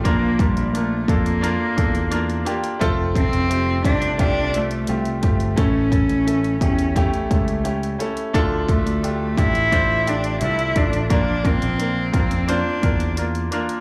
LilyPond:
<<
  \new Staff \with { instrumentName = "Grand piano" } { \time 4/4 \key bes \lydian \tempo 4 = 87 <bes d' f' bes'>8 <bes d' f' bes'>8 <bes d' f' bes'>8 <bes d' f' a'>8 <bes d' f' bes'>8 <bes d' f' a'>8 <bes d' f' bes'>8 <bes d' f' g'>8 | <a c' f' a'>8 <a c' f' a'>8 <a c' f' g'>8 <a c' f' c''>8 <a c' f' g'>8 <a c' f' a'>8 <a c' f' g'>8 <a c' f' g'>8 | <a cis' e' a'>8 <a cis' e' a'>8 <a cis' e' a'>8 <a cis' e' g'>8 <a cis' e' g'>8 <a cis' e' a'>8 <a cis' e' g'>8 <a cis' e' a'>8 | <a d' f' a'>8 <a d' f' a'>8 <a d' f' g'>8 <a d' f' g'>8 <a d' f' c''>8 <a d' f' g'>8 <a d' f' a'>8 <a d' f' a'>8 |
<bes d' f' bes'>8 <bes d' f' bes'>8 <bes d' f' bes'>8 <bes d' f' bes'>8 <bes d' f' c''>8 <bes d' f' bes'>8 <bes d' f' bes'>8 <bes d' f' bes'>8 | }
  \new Staff \with { instrumentName = "Grand piano" } { \clef bass \time 4/4 \key bes \lydian bes,4. r2 r8 | r1 | a,4. r2 r8 | d4. r2 r8 |
bes,4. r2 r8 | }
  \new Staff \with { instrumentName = "Cello" } { \time 4/4 \key bes \lydian bes8 g8 a8 bes2 r8 | r8 c'4 d'8 d'8 a4 a8 | cis'4. cis'8 a4. r8 | r8 a4 e'4 d'8 e'8 d'8 |
d'8 c'4 c'8 d'4 r4 | }
  \new Staff \with { instrumentName = "Picked electric bass" } { \clef bass \time 4/4 \key bes \lydian bes,,8. bes,,8. f,8. r16 e,4 r8 | f,,8. f,,8. c,4. c,8 g,,8 | a,,8. a,,8. e,8. r16 cis,4 r8 | d,8. d,8. a,,4. c,8 a,,8 |
bes,,8. bes,,8. f,8. r16 e,4 r8 | }
  \new DrumStaff \with { instrumentName = "Drums" } \drummode { \time 4/4 <hh bd>8 <hh bd>16 hh16 hh8 <hh bd>16 hh16 hh8 <hh bd>16 hh16 hh16 hh16 hh16 hh16 | <hh bd>8 <hh bd>16 hh16 hh8 <hh bd>16 hh16 <hh bd>8 hh16 hh16 hh16 hh16 <hh bd>16 hh16 | <hh bd>8 <hh bd>16 hh16 hh16 hh16 <hh bd>16 hh16 <hh bd>16 hh16 <hh bd>16 hh16 hh16 hh16 hh16 hh16 | <hh bd>8 <hh bd>16 hh16 hh8 <hh bd>16 hh16 <hh bd>8 hh16 hh16 hh16 hh16 <hh bd>16 hh16 |
<hh bd>8 <hh bd>16 hh16 hh8 <hh bd>16 hh16 hh8 <hh bd>16 hh16 hh16 hh16 hh16 hh16 | }
>>